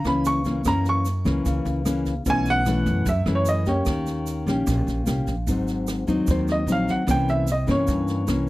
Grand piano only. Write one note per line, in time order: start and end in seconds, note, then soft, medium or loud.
0.07 0.27 B5 medium
0.27 0.67 C#6 loud
0.68 0.87 A#5 loud
0.89 1.64 C#6 loud
2.30 2.49 G#5 loud
2.50 3.05 F#5 loud
3.09 3.35 E5 medium
3.35 3.48 C#5 medium
3.49 3.68 D#5 medium
3.68 5.24 C#5 medium
6.31 6.49 C5 medium
6.52 6.69 D#5 medium
6.72 6.90 F5 medium
6.91 7.09 F#5 medium
7.11 7.29 G5 loud
7.30 7.48 E5 medium
7.52 7.70 D#5 medium
7.71 8.49 C#5 medium